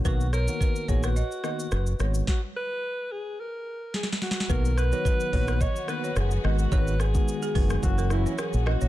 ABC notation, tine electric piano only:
X:1
M:4/4
L:1/16
Q:"Swing 16ths" 1/4=108
K:B
V:1 name="Tine electric piano"
[D,A,B,F]2 z [D,A,B,F]3 [D,A,B,F]2 z2 [D,A,B,F]2 z2 [D,G,B,F]2 | z16 | [D,A,B,F]2 z [D,F,B,F]3 [D,A,B,F]2 z2 [D,A,B,F]2 z2 [D,G,B,F]2 | [D,G,B,F]2 z [D,G,B,F]3 [D,G,B,F]2 [E,A,CF]2 [E,A,CF]2 z2 [E,A,CF]2 |]